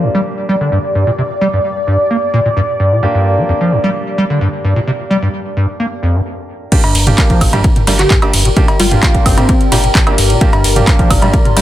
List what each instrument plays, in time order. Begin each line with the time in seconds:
Already playing: grand piano A#3 D4 F4 G4, ambient pad G4 D5 G5, analog synth pad D5
0.03 acid bass G2
0.15 acid bass G3
0.49 acid bass G3
0.61 acid bass D3
0.72 acid bass G2
0.95 acid bass G2
1.07 acid bass A#2
1.18 acid bass C3
1.41 acid bass G3
1.53 acid bass G2
1.87 acid bass G2
2.10 acid bass A#3
2.34 acid bass A#2
2.45 acid bass A#2
2.57 acid bass G2
2.80 acid bass G2
2.92 acid bass A#2
3.03 acid bass G2, grand piano A#3 D4 F4 G4
3.15 acid bass G2
3.38 acid bass G3
3.49 acid bass F2
3.61 acid bass F3
3.72 acid bass G2
3.84 acid bass G3
4.18 acid bass G3
4.30 acid bass D3
4.41 acid bass G2
4.64 acid bass G2
4.76 acid bass A#2
4.87 acid bass C3
5.10 acid bass G3
5.22 acid bass G2
5.57 acid bass G2
5.80 acid bass A#3
6.03 acid bass F2
6.15 acid bass G2
6.72 acid bass G2, grand piano A#3 D4 F4 G4, ambient pad G4, analog synth pad A#4, kick, closed hi-hat, crash
6.84 acid bass G2, closed hi-hat, cowbell
6.95 sub bass G1, open hi-hat, ride
7.02 ambient pad D5
7.07 acid bass G3, grand piano A#3 D4 F4 G4, closed hi-hat, mid tom
7.18 acid bass F2, kick, clap, closed hi-hat, cowbell
7.26 acid bass F3, ambient pad G5, kick, closed hi-hat
7.41 sub bass G1, acid bass G2, kick, open hi-hat, ride, high woodblock
7.53 acid bass G3, grand piano A#3 D4 F4 G4, closed hi-hat, mid tom, cowbell
7.64 kick, closed hi-hat
7.76 closed hi-hat, mid tom
7.87 sub bass G1, acid bass G3, grand piano A#3 D4 F4 G4, open hi-hat, ride, cowbell
7.99 acid bass D3, digital synth lead G4, clap, closed hi-hat
8.10 acid bass G2, kick, clap, closed hi-hat
8.22 grand piano A#3 D4 F4 G4, closed hi-hat, cowbell, high woodblock
8.33 sub bass G1, acid bass G2, open hi-hat, ride
8.45 acid bass A#2, closed hi-hat
8.57 acid bass C3, grand piano A#3 D4 F4 G4, kick, closed hi-hat
8.68 closed hi-hat, cowbell
8.80 sub bass G1, acid bass G3, digital synth lead F4, open hi-hat, ride
8.91 acid bass G2, grand piano A#3 D4 F4 G4, closed hi-hat, mid tom
9.03 kick, clap, closed hi-hat, cowbell
9.15 kick, closed hi-hat
9.26 sub bass G1, acid bass G2, digital synth lead C4, kick, open hi-hat, ride, high woodblock
9.38 grand piano A#3 D4 F4 G4, closed hi-hat, mid tom, cowbell
9.49 acid bass A#3, kick, closed hi-hat
9.61 closed hi-hat
9.72 sub bass G1, acid bass A#2, grand piano A#3 D4 F4 G4, open hi-hat, ride, cowbell
9.84 acid bass A#2, closed hi-hat
9.95 acid bass G2, kick, clap, closed hi-hat
10.07 grand piano A#3 D4 F4 G4, closed hi-hat, cowbell, high woodblock
10.18 sub bass G1, acid bass G2, open hi-hat, ride
10.30 acid bass A#2, closed hi-hat
10.41 acid bass G2, grand piano A#3 D4 F4 G4, kick, closed hi-hat
10.53 acid bass G2, closed hi-hat, cowbell
10.64 sub bass G1, open hi-hat, ride
10.76 acid bass G3, grand piano A#3 D4 F4 G4, closed hi-hat, mid tom
10.87 acid bass F2, kick, clap, closed hi-hat, cowbell
10.96 acid bass F3, ambient pad C6, kick, closed hi-hat
11.10 sub bass G1, acid bass G2, kick, open hi-hat, ride, high woodblock
11.22 acid bass G3, grand piano A#3 D4 F4 G4, closed hi-hat, mid tom, cowbell
11.34 kick, closed hi-hat
11.45 closed hi-hat, mid tom
11.56 sub bass G1, acid bass G3, grand piano A#3 D4 F4 G4, open hi-hat, ride, cowbell